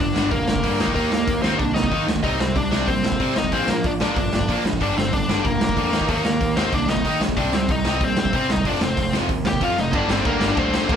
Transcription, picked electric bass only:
0.00 0.13 G1 medium
0.15 0.29 G1 medium
0.31 0.46 F1 medium
0.47 0.61 F1 medium
0.63 0.78 G2 medium
0.79 0.94 D#2 medium
0.96 1.10 D#2 medium
1.11 1.26 D#2 medium
1.27 1.41 D#2 medium
1.42 1.57 D#2 medium
1.60 1.74 C2 medium
1.76 1.90 C2 medium
1.91 2.06 D#3 medium
2.07 2.21 D2 medium
2.23 2.38 C2 medium
2.40 2.54 C2 medium
2.56 2.70 C2 medium
2.72 2.86 C2 medium
2.87 3.02 A#1 medium
3.05 3.19 A#1 medium
3.20 3.34 C3 medium
3.37 3.51 C2 medium
3.52 3.66 A#1 medium
3.68 3.82 A#1 medium
3.84 3.99 A#1 medium
4.01 4.15 A#1 medium
4.16 4.30 G1 medium
4.32 4.47 G1 medium
4.49 4.63 A#2 medium
4.64 4.78 A#1 medium
4.81 4.95 G1 medium
4.97 5.11 G1 medium
5.13 5.27 G1 medium
5.28 5.42 G1 medium
5.45 5.59 F1 medium
5.61 5.75 F1 medium
5.76 5.91 F2 medium
5.93 6.07 D#2 medium
6.09 6.23 D#2 medium
6.24 6.38 D#2 medium
6.41 6.55 D#2 medium
6.56 6.71 D#2 medium
6.72 6.87 C2 medium
6.88 7.03 C2 medium
7.05 7.19 D#3 medium
7.20 7.35 A#1 medium
7.37 7.51 C2 medium
7.52 7.67 C2 medium
7.69 7.83 C2 medium
7.86 8.00 C2 medium
8.01 8.15 A#1 medium
8.16 8.31 A#1 medium
8.34 8.48 C3 medium
8.49 8.63 C2 medium
8.65 8.79 F1 medium
8.81 8.95 F1 medium
8.97 9.11 F1 medium
9.14 9.28 F1 medium
9.29 9.43 D#2 medium
9.46 9.60 D#2 medium
9.61 9.75 F2 medium
9.77 9.93 F1 medium
9.93 10.04 G1 medium
10.09 10.20 G1 medium
10.25 10.36 D2 medium
10.40 10.51 G1 medium
10.57 10.78 D2 medium
10.89 10.96 D2 medium

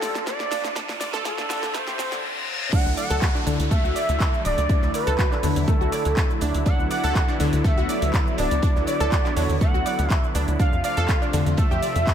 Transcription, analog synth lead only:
0.00 0.23 A4 loud
0.27 0.72 D5 loud
1.25 1.76 A4 medium
1.75 2.24 C5 loud
2.73 2.96 F#5 loud
2.97 3.43 F#5 loud
3.71 4.41 E5 loud
4.45 4.91 D5 loud
4.94 5.64 B4 loud
5.68 6.38 A4 medium
6.66 6.89 F#5 loud
6.91 7.37 F#5 loud
7.65 8.34 E5 loud
8.38 8.84 D5 loud
8.87 9.36 D5 loud
9.36 9.57 C#5 loud
9.61 10.13 F#5 loud
10.13 10.31 E5 loud
10.60 10.83 F5 loud
10.84 11.30 F5 loud
11.58 12.14 E5 loud

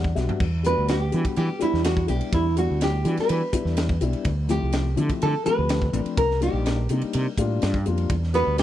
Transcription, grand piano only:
0.00 0.14 D5 medium
0.15 0.40 G3 medium
0.15 0.40 B3 medium
0.15 0.40 D4 medium
0.15 0.40 F#4 medium
0.15 0.38 E5 medium
0.63 0.99 G3 medium
0.63 0.99 B3 medium
0.63 0.99 D4 medium
0.63 0.99 F#4 medium
1.12 1.47 G3 medium
1.12 1.47 B3 medium
1.12 1.47 D4 medium
1.12 1.48 F#4 medium
1.59 1.95 G3 medium
1.59 1.95 B3 medium
1.59 1.95 D4 medium
1.59 1.95 G4 medium
2.07 2.43 G3 medium
2.07 2.43 B3 medium
2.07 2.43 D4 medium
2.07 2.43 E4 medium
2.56 2.91 G3 medium
2.56 2.92 B3 medium
2.56 2.92 D4 medium
2.56 2.92 F#4 medium
3.04 3.40 G3 medium
3.04 3.40 B3 medium
3.04 3.40 D4 medium
3.04 3.40 F#4 medium
3.53 3.88 G3 medium
3.53 3.88 B3 medium
3.53 3.88 D4 medium
3.53 3.88 E4 medium
4.01 4.25 G3 medium
4.01 4.25 B3 medium
4.01 4.26 D4 medium
4.01 4.26 E4 medium
4.48 4.84 F3 medium
4.48 4.84 A3 medium
4.48 4.84 C4 medium
4.48 4.84 E4 medium
4.96 5.32 F3 medium
4.96 5.32 A3 medium
4.96 5.32 C4 medium
4.96 5.32 E4 medium
5.45 5.80 F3 medium
5.45 5.81 A3 medium
5.45 5.81 C4 medium
5.45 5.81 G4 medium
5.92 6.17 F3 medium
5.92 6.18 A3 medium
5.92 6.18 C4 medium
5.92 6.18 D4 medium
6.41 6.76 G3 medium
6.41 6.77 A#3 medium
6.41 6.77 D4 medium
6.41 6.77 D#4 medium
6.90 7.25 G3 medium
6.90 7.25 A#3 medium
6.90 7.25 D4 medium
6.90 7.26 D#4 medium
7.38 7.73 G3 medium
7.38 7.74 A#3 medium
7.38 7.74 D4 medium
7.38 7.74 F4 medium
7.86 8.10 G3 medium
7.86 8.11 A#3 medium
7.86 8.11 D4 medium
7.86 8.11 F4 medium
8.34 8.63 G3 medium
8.34 8.63 B3 medium
8.34 8.63 D4 medium
8.34 8.63 F#4 medium

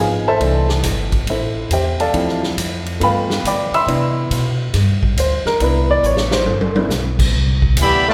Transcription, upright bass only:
0.00 0.39 G#1 medium
0.40 0.82 C2 medium
0.83 1.26 G1 medium
1.27 1.69 A1 medium
1.70 2.12 E2 medium
2.13 2.56 D2 medium
2.57 2.99 F2 medium
3.00 3.43 G2 medium
3.44 3.71 D3 medium
3.71 muted upright bass stroke soft
3.87 4.29 C3 medium
4.30 4.73 B2 medium
4.74 5.16 G2 medium
5.16 5.44 D2 medium
5.45 muted upright bass stroke soft
5.60 6.03 C2 medium
6.03 6.45 A1 medium
6.46 6.88 G1 medium
6.89 7.32 B1 medium
7.33 7.76 C2 medium
7.76 8.14 D2 medium

